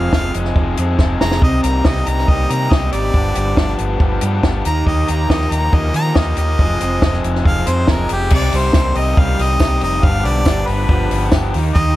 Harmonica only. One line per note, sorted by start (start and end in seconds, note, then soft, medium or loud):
0.00 0.13 F5 medium
0.14 0.34 F5 loud
1.21 1.42 A#5 medium
1.43 1.63 D#5 medium
1.63 1.88 A#5 medium
1.86 2.09 D#5 medium
2.08 2.31 A#5 medium
2.29 2.53 D#5 medium
2.51 2.74 A#5 medium
2.72 2.92 D#5 medium
2.93 3.77 D5 loud
4.66 4.87 A#5 medium
4.87 5.11 D#5 medium
5.10 5.32 A#5 medium
5.31 5.54 D#5 medium
5.52 5.76 A#5 loud
5.75 5.95 D#5 medium
5.96 6.18 A#5 loud
6.16 6.37 D#5 medium
6.38 7.22 D#5 loud
7.46 7.70 F5 loud
7.69 7.92 C5 medium
7.91 8.10 A#4 medium
8.13 8.33 G4 loud
8.35 8.58 D5 loud
8.57 8.99 C5 medium
8.97 9.20 D#5 medium
9.19 9.44 F5 loud
9.43 9.83 D#5 loud
9.83 10.06 D#5 loud
10.04 10.27 F5 loud
10.26 10.68 D5 loud
10.67 11.32 B4 medium
11.75 11.96 D#5 loud